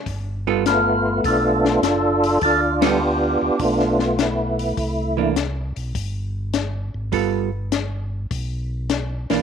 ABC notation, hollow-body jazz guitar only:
X:1
M:4/4
L:1/8
Q:"Swing" 1/4=102
K:G
V:1 name="Hollow-body jazz guitar"
z [G,B,=FA] z6 | z [G,B,=FA] z6 | z [E,_B,D] z6 | [G,B,=FA] z6 [E,_B,D] |]